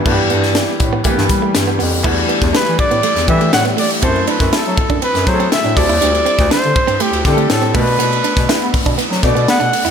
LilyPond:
<<
  \new Staff \with { instrumentName = "Flugelhorn" } { \time 4/4 \key g \major \tempo 4 = 121 r1 | r4 b'8 d''4 e''8 fis''8 d''8 | c''8 b'8 a'4 b'8 c''8 e''8 d''8~ | d''4 c''4 g'8 g'8 a'8 b'8~ |
b'2 r8 d''8 fis''4 | }
  \new Staff \with { instrumentName = "Grand piano" } { \time 4/4 \key g \major <e g b d' fis' g'>4.~ <e g b d' fis' g'>16 r16 <e g bes b d' g'>4.~ <e g bes b d' g'>16 r16 | <e g a d' fis'>4.~ <e g a d' fis'>16 r8. <e g a d' g'>4. | <fis a c' e' a'>4.~ <fis a c' e' a'>16 r8. <fis a c' e' gis' a'>4 <g c' d' e' a'>8~ | <g c' d' e' a'>4~ <g c' d' e' a'>16 r4 r16 <g c' d' e' g' a'>4 <a b d' fis' bes' b'>8~ |
<a b d' fis' bes' b'>4~ <a b d' fis' bes' b'>16 r4 r16 <a b d' fis' d''>4. | }
  \new Staff \with { instrumentName = "Clean electric guitar" } { \time 4/4 \key g \major a16 r16 b16 r16 d'16 r8 b16 a16 r8 a16 r16 b16 b16 r16 | e'16 r16 b16 r16 d'16 r8 b16 a16 r8 a16 r16 b16 a16 r16 | c'16 r16 d'16 r16 e'16 r8 d'16 c'16 r8 c'16 r16 d'16 r16 e'16 | d'16 r16 c'16 r16 d'16 r8 c'16 a16 r8 a16 r16 c'16 a16 r16 |
b16 r16 d'16 r16 e'16 r8 d'16 b16 r8 b16 r16 d'16 r16 e'16 | }
  \new Staff \with { instrumentName = "Bass clarinet" } { \clef bass \time 4/4 \key g \major g,8 g,8. r16 a,8 r16 g,16 g8 g,8 f,8 | e,8 r16 e,16 e16 e16 r16 a,16 r16 e,16 e8 a,8 r8 | fis,8 r16 fis,16 fis16 fis16 r16 fis,16 r16 fis,16 fis8 r16 a,16 d,16 dis,16 | d,8 r16 d,16 d16 d16 r16 g,16 r16 d,16 d8 a,8 b,8 |
b,8 r16 b,16 b16 b16 r16 b,16 r16 fis16 b,16 b,16 b16 b,16 r16 f,16 | }
  \new DrumStaff \with { instrumentName = "Drums" } \drummode { \time 4/4 <cymc bd>8 hh16 sn16 <hh sn>8 <hh bd>8 <hh bd>16 sn16 <hh bd sn>8 <hh sn>8 hho8 | <cymc bd>16 cymr16 cymr16 <bd cymr sn>16 <cymr sn>16 cymr16 <bd cymr>16 cymr16 cymr16 <cymr sn>16 <bd cymr>16 cymr16 <cymr sn>16 cymr16 <hho cymr>16 cymr16 | <hhp bd cymr>16 cymr16 cymr16 <bd cymr sn>16 <cymr sn>16 cymr16 <bd cymr>16 <bd cymr>16 cymr16 <cymr sn>16 <bd cymr sn>16 cymr16 <cymr sn>16 cymr16 <hho bd cymr>16 cymr16 | <hhp cymr>16 cymr16 cymr16 <bd cymr sn>16 <cymr sn>16 cymr16 <bd cymr>16 cymr16 cymr16 cymr16 <bd cymr sn>16 cymr16 <cymr sn>16 cymr16 <hho bd cymr>16 cymr16 |
<hhp cymr>16 cymr16 cymr16 <bd cymr sn>16 <cymr sn>16 cymr16 <hho bd cymr>16 <bd cymr>16 <hhp cymr>16 sn16 <bd cymr sn>16 cymr16 <cymr sn>16 cymr16 <hho cymr>16 cymr16 | }
>>